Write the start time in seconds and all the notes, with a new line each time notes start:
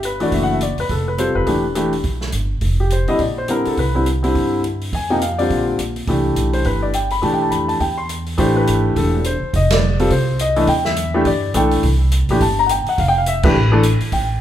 Already playing: G1
0.03 B4, closed hi-hat
0.20 E3 A3 D4 F#4 D5, open hi-hat
0.32 F#1 E5, kick, open hi-hat
0.43 F#5
0.53 E5
0.61 D5, closed hi-hat
0.78 E1 B4, open hi-hat
0.89 F1 A4, kick, open hi-hat
1.08 B4
1.18 G3 C4 F4 A4 C5, closed hi-hat
1.35 F1 B4
1.47 E1 E3 A3 D4 G4, kick, open hi-hat
1.75 E3 A3 D4 G4, closed hi-hat
1.93 open hi-hat
2.04 B1, kick, open hi-hat
2.21 snare
2.32 G1, closed hi-hat
2.61 F1, kick, open hi-hat
2.80 G4
2.90 C5, closed hi-hat
3.08 F2 D3 G3 C4 E4 D#5, open hi-hat
3.19 A#1 D5, kick, open hi-hat
3.38 C5
3.48 D3 G3 C4 E4 A#4, closed hi-hat
3.65 A4, muted upright bass stroke, open hi-hat
3.77 C2 B4, kick, open hi-hat
3.94 D3 G3 C4 E4
4.06 closed hi-hat
4.23 D3 G3 C4 E4, open hi-hat
4.35 G2, kick, open hi-hat
4.64 closed hi-hat
4.81 open hi-hat
4.93 F2 G#5, kick, open hi-hat
5.10 C3 F3 A#3 D#4 G5
5.22 F5, closed hi-hat
5.39 D3 G3 C4 F4 D5, open hi-hat
5.50 A#1, kick, open hi-hat
5.78 A#1, closed hi-hat
5.96 open hi-hat
6.07 C2 E3 A3 D4 G4, kick, open hi-hat
6.36 B1, closed hi-hat
6.53 C5, open hi-hat
6.64 G1 B4, kick, open hi-hat
6.83 D5
6.93 G5, closed hi-hat
7.10 B5, open hi-hat
7.22 B1 E3 A3 D4 G4 A5, kick, open hi-hat
7.34 G5
7.42 A5
7.51 F2 B5, closed hi-hat
7.68 A5, open hi-hat
7.80 E2 G5, kick, open hi-hat
7.98 C6
8.09 closed hi-hat
8.26 open hi-hat
8.38 A1 E3 A3 D4 G4 C5, kick, open hi-hat
8.56 B4
8.67 G#1, closed hi-hat
8.96 E1 A4, kick, open hi-hat
9.24 C5, closed hi-hat
9.42 muted upright bass stroke
9.53 F1 D#5, kick, open hi-hat
9.70 D5, snare, ride
9.99 G3 C4 F4 A4, open hi-hat
10.10 C2 C5, kick, open hi-hat
10.39 D#5, closed hi-hat
10.56 E3 A3 D4 E4, open hi-hat
10.67 E2 G5, kick, open hi-hat
10.85 E5, snare
10.96 closed hi-hat
11.14 E3 A3 D4 G4
11.25 G2 D5, kick, open hi-hat
11.54 B1 E3 A3 D4 A4 G5, closed hi-hat
11.71 open hi-hat
11.83 C2, kick, open hi-hat
12.12 closed hi-hat
12.29 A#1 E3 A3 D4 G4, open hi-hat
12.41 G1 A5, kick, open hi-hat
12.59 A#5
12.66 F#5, closed hi-hat
12.71 G5
12.86 F#5, muted upright bass stroke, open hi-hat
12.98 F1 F5, kick, open hi-hat
13.08 G5
13.18 F5
13.26 E5, closed hi-hat
13.43 E3 A3 D4 G4 B4, kick, crash
13.55 A1
13.72 E3 A3 D4 A4
13.83 closed hi-hat
14.01 muted upright bass stroke, open hi-hat
14.12 A1 G5, kick, open hi-hat